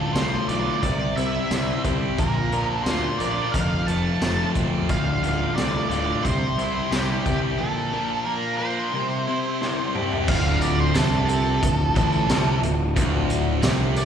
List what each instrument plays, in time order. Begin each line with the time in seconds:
Already playing: overdriven electric guitar D2 F4, distorted electric guitar A2, steel-string acoustic guitar D4 F4 A4, lead electric guitar A4
0.13 picked electric bass C2, distorted electric guitar A2, steel-string acoustic guitar F3 F4, overdriven electric guitar A3, lead electric guitar C5, snare, closed hi-hat, tambourine
0.47 picked electric bass B1, distorted electric guitar D3, steel-string acoustic guitar D4 F4 A4, overdriven electric guitar F4, lead electric guitar D5, closed hi-hat
0.82 picked electric bass C2, steel-string acoustic guitar C3 G3 C4 E4 C5, overdriven electric guitar C3, lead electric guitar D5, kick, closed hi-hat
1.16 picked electric bass C2, overdriven electric guitar C4, steel-string acoustic guitar C4 E4 C5, distorted electric guitar E4, lead electric guitar E5, closed hi-hat
1.49 picked electric bass C2, steel-string acoustic guitar G3 C4, overdriven electric guitar E4, distorted electric guitar C5, snare, closed hi-hat, tambourine
1.83 picked electric bass C2, steel-string acoustic guitar C4 E4 C5, overdriven electric guitar G4, kick, closed hi-hat
2.18 picked electric bass A#1, steel-string acoustic guitar A#2 D3 F3 A#3 D4 A#4, overdriven electric guitar A#2, lead electric guitar A#4, kick, closed hi-hat
2.52 picked electric bass A#1, distorted electric guitar F3, steel-string acoustic guitar F3 A#3 D4 A#4, overdriven electric guitar A#4, closed hi-hat
2.68 lead electric guitar A4
2.84 picked electric bass D2, steel-string acoustic guitar F3 A#3 D4, distorted electric guitar A#3, overdriven electric guitar F4, lead electric guitar C5, snare, closed hi-hat, tambourine
2.88 steel-string acoustic guitar A#4
3.18 picked electric bass A#1, steel-string acoustic guitar F3, distorted electric guitar D4, overdriven electric guitar A#4, lead electric guitar D5, closed hi-hat
3.52 picked electric bass F1, overdriven electric guitar F2, steel-string acoustic guitar F3 C4 F4 A4, lead electric guitar F5, kick, closed hi-hat
3.87 picked electric bass F1, overdriven electric guitar F3, distorted electric guitar A3, steel-string acoustic guitar C4 F4 A4, lead electric guitar A5, closed hi-hat
4.20 picked electric bass F1, steel-string acoustic guitar F3 C4 F4 A4, overdriven electric guitar A3, distorted electric guitar F4, snare, closed hi-hat, tambourine
4.55 picked electric bass E1, overdriven electric guitar C4, steel-string acoustic guitar C4 F4 A4, kick, closed hi-hat
4.87 picked electric bass D1, overdriven electric guitar D2, steel-string acoustic guitar D3 F3 D4 F4 A4, lead electric guitar F5, kick, closed hi-hat
5.21 picked electric bass D1, distorted electric guitar A2, steel-string acoustic guitar D4 F4 A4, overdriven electric guitar F4, closed hi-hat
5.56 picked electric bass C2, distorted electric guitar A2, steel-string acoustic guitar F3 F4, overdriven electric guitar A3, lead electric guitar D5, snare, closed hi-hat, tambourine
5.90 picked electric bass D1, distorted electric guitar D3, steel-string acoustic guitar D4 F4 A4, overdriven electric guitar F4, lead electric guitar D5, closed hi-hat
6.23 picked electric bass C2, steel-string acoustic guitar C3 G3 C4 E4 G4, overdriven electric guitar C3, lead electric guitar C5, kick, closed hi-hat
6.58 picked electric bass C2, overdriven electric guitar C4, steel-string acoustic guitar C4, distorted electric guitar E4, closed hi-hat
6.90 picked electric bass C2, steel-string acoustic guitar G3 C4 E4 G4, overdriven electric guitar E4, lead electric guitar G4, distorted electric guitar C5, snare, closed hi-hat, tambourine
7.25 picked electric bass C2, steel-string acoustic guitar C4 E4 G4, overdriven electric guitar G4, kick, closed hi-hat
7.57 steel-string acoustic guitar A#2 D3 F3 A#3 D4, overdriven electric guitar A#2, lead electric guitar A4
7.92 distorted electric guitar F3, steel-string acoustic guitar F3 A#3 D4, overdriven electric guitar A#4
8.25 steel-string acoustic guitar F3 A#3 D4 A#4, distorted electric guitar A#3, overdriven electric guitar F4, lead electric guitar A#4
8.57 steel-string acoustic guitar D4 A#4, distorted electric guitar D4, overdriven electric guitar A#4, lead electric guitar C5
8.61 steel-string acoustic guitar F3 A#3
8.93 steel-string acoustic guitar C3 G3 C4 E4 C5, overdriven electric guitar C3
9.26 overdriven electric guitar C4, steel-string acoustic guitar C4 E4 C5, distorted electric guitar E4
9.59 steel-string acoustic guitar G3 C4 E4 C5, overdriven electric guitar E4, distorted electric guitar C5, snare
9.93 steel-string acoustic guitar C4 E4 C5, overdriven electric guitar G4, mid tom
10.11 floor tom
10.28 picked electric bass D1, overdriven electric guitar D2, steel-string acoustic guitar D3 F3 D4 F4 A4, lead electric guitar F5, kick, crash
10.61 steel-string acoustic guitar D4 F4 A4, lead electric guitar D5, closed hi-hat, tambourine
10.80 lead electric guitar C5
10.94 picked electric bass C2, overdriven electric guitar C3, steel-string acoustic guitar D3 F3 D4 F4 A4, lead electric guitar A4, snare, closed hi-hat, tambourine
11.12 tambourine
11.28 steel-string acoustic guitar D4 F4 A4, lead electric guitar A4, closed hi-hat, tambourine
11.46 tambourine
11.62 picked electric bass D1, overdriven electric guitar D2, steel-string acoustic guitar F3 D4 F4 A4, kick, closed hi-hat, tambourine
11.79 tambourine
11.95 picked electric bass A1, overdriven electric guitar A2, steel-string acoustic guitar D4 F4 A4, kick, closed hi-hat, tambourine
12.13 tambourine
12.28 picked electric bass C2, overdriven electric guitar C3, steel-string acoustic guitar D3 F3 D4 F4 A4, snare, closed hi-hat, tambourine
12.62 picked electric bass D1, overdriven electric guitar D2, steel-string acoustic guitar D4 F4 A4, closed hi-hat, tambourine
12.96 picked electric bass D1, overdriven electric guitar D2, steel-string acoustic guitar D3 F3 D4 F4 A4, kick, closed hi-hat
13.29 steel-string acoustic guitar D4 F4 A4, closed hi-hat, tambourine
13.62 picked electric bass C2, overdriven electric guitar C3, steel-string acoustic guitar D3 F3 D4 F4 A4, snare, closed hi-hat, tambourine
13.80 tambourine
13.96 steel-string acoustic guitar D4 F4 A4, lead electric guitar D5, closed hi-hat, tambourine